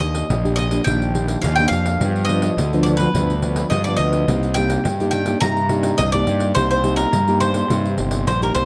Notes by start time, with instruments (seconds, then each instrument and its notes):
Already playing: fingered electric bass D#2, nylon-string guitar D#3
0.00 nylon-string guitar A#3 D4 G4, mandolin D#5, pandeiro
0.15 pandeiro
0.29 fingered electric bass A#1, nylon-string guitar A#2, pandeiro
0.44 nylon-string guitar A#3 D4 G4, pandeiro
0.56 mandolin D#5, pandeiro
0.71 nylon-string guitar A#3 D4 G4, pandeiro
0.84 fingered electric bass A#1, nylon-string guitar D#3 A#3 D4 G4, mandolin G5, pandeiro
1.02 pandeiro
1.14 nylon-string guitar A#3 D4 G4, pandeiro
1.28 pandeiro
1.42 fingered electric bass D#2, nylon-string guitar A#2, mandolin F5, pandeiro
1.56 nylon-string guitar A#3 D4, mandolin G5, pandeiro
1.60 nylon-string guitar G4
1.68 fingered electric bass F2, mandolin F5
1.72 pandeiro
1.86 pandeiro
2.00 nylon-string guitar G2 F3 B3 D4, fingered electric bass G2, pandeiro
2.16 pandeiro
2.25 nylon-string guitar F3, mandolin D#5
2.29 nylon-string guitar B3 D4, pandeiro
2.42 pandeiro
2.57 fingered electric bass D2, nylon-string guitar D3, pandeiro
2.73 nylon-string guitar F3 B3 D4, pandeiro
2.83 mandolin D5, pandeiro
2.97 nylon-string guitar F3 B3 D4, mandolin B4, pandeiro
3.14 fingered electric bass D2, nylon-string guitar G2 F3 B3 D4, pandeiro
3.30 pandeiro
3.42 nylon-string guitar F3 B3 D4, pandeiro
3.56 pandeiro
3.70 fingered electric bass G2, nylon-string guitar D3, mandolin D#5, pandeiro
3.84 nylon-string guitar F3 B3 D4, mandolin D5, pandeiro
3.97 fingered electric bass D2, mandolin D#5, pandeiro
4.13 pandeiro
4.28 fingered electric bass C2, nylon-string guitar C3 A#3 D#4 G4, pandeiro
4.43 pandeiro
4.54 nylon-string guitar A#3 D#4 G4, mandolin G5, pandeiro
4.70 pandeiro
4.85 nylon-string guitar G2, fingered electric bass G2, pandeiro
5.00 nylon-string guitar A#3 D#4 G4, pandeiro
5.11 mandolin G5, pandeiro
5.26 nylon-string guitar A#3 D#4 G4, pandeiro
5.41 fingered electric bass G2, nylon-string guitar C3 A#3 D#4 G4, mandolin A#5, pandeiro
5.57 pandeiro
5.69 nylon-string guitar A#3 D#4 G4, pandeiro
5.83 pandeiro
5.98 fingered electric bass C2, nylon-string guitar G2, mandolin D#5, pandeiro
6.12 nylon-string guitar A#3 D#4 G4, mandolin D5, pandeiro
6.27 fingered electric bass G2, pandeiro
6.40 pandeiro
6.55 fingered electric bass C2, nylon-string guitar C3 A#3 D#4 G4, mandolin C5, pandeiro
6.71 mandolin C5, pandeiro
6.83 nylon-string guitar A#3 D#4 G4, pandeiro
6.96 mandolin A#4, pandeiro
7.13 fingered electric bass G2, nylon-string guitar G2, pandeiro
7.28 nylon-string guitar A#3 D#4 G4, pandeiro
7.40 mandolin C5, pandeiro
7.54 nylon-string guitar A#3 D#4 G4, pandeiro
7.70 fingered electric bass G2, nylon-string guitar C3 A#3 D#4 G4, pandeiro
7.85 pandeiro
7.98 fingered electric bass G1, nylon-string guitar A#3 D#4 G4, pandeiro
8.11 pandeiro
8.27 fingered electric bass A#1, nylon-string guitar G2, mandolin C5, pandeiro
8.42 nylon-string guitar A#3 D#4 G4, mandolin A#4, pandeiro
8.55 fingered electric bass C2, mandolin C5, pandeiro